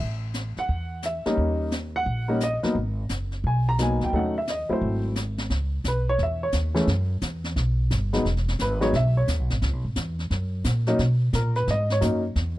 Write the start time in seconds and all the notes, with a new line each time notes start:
Already playing: E5
0.00 A1, brush sweep, kick
0.34 snare, hi-hat pedal
0.57 F#5, muted upright bass stroke, snare
0.69 E2, brush sweep, kick
1.02 E5, snare, hi-hat pedal
1.26 G3 A#3 C#4 D#4, muted upright bass stroke, snare
1.38 D#2, brush sweep, kick
1.71 snare, hi-hat pedal
1.96 F#5
2.06 A#1, brush sweep, kick
2.28 G3 A#3 C#4 D#4
2.40 D#5, snare, hi-hat pedal
2.63 F#3 A#3 B3 D#4, muted upright bass stroke, snare
2.75 G#1, brush sweep, kick
3.09 F#1, snare, hi-hat pedal
3.32 snare
3.44 B1 G#5, brush sweep, kick
3.69 A#5
3.78 F#3 A#3 B3 D#4, snare, hi-hat pedal
3.82 G#5
4.01 D2 G5, snare
4.13 D#2 F#3 A3 C#4 D#4 F#5, brush sweep, kick
4.38 E5
4.47 D#5, snare, hi-hat pedal
4.69 D#2 F#3 A3 C4 E4 C5
4.82 G#1, brush sweep, kick
5.15 snare, hi-hat pedal
5.38 snare
5.50 C#2, brush sweep, kick, snare
5.84 B1 B4, kick, snare, hi-hat pedal
6.09 C#5
6.19 E2, brush sweep, kick, snare
6.23 E5
6.43 C#5
6.52 D#2, kick, snare, hi-hat pedal
6.75 E3 G#3 A3 C#4, snare
6.87 F#2, brush sweep, kick, snare
7.21 E2, kick, snare, hi-hat pedal
7.44 snare
7.56 B1, brush sweep, kick, snare
7.90 G1, kick, snare, hi-hat pedal
8.13 F#3 G#3 B3 D#4, snare
8.25 E1, brush sweep, kick, snare
8.37 snare
8.48 snare
8.59 G#1 B4, kick, snare, hi-hat pedal
8.81 F#3 G#3 B3 D#4 C#5, snare
8.93 B1 E5, brush sweep, kick, snare
9.17 C#5
9.28 D#2, kick, snare, hi-hat pedal
9.39 B1
9.50 G#1, snare
9.62 C#2, brush sweep, kick, snare
9.73 B1
9.84 G#1
9.96 E2, kick, snare, hi-hat pedal
10.19 snare
10.30 F#2, brush sweep, kick, snare
10.64 A#2, kick, snare, hi-hat pedal
10.87 F#3 A#3 C#4 D#4, snare
10.99 B2, brush sweep, kick, snare
11.33 A#2 A#4, kick, snare, hi-hat pedal
11.55 B4, snare
11.67 G#2 D#5, brush sweep, kick, snare
11.90 C#5, snare
12.01 F#2 F#3 A#3 C#4 D#4, kick, snare, hi-hat pedal
12.36 E2, brush sweep, kick, snare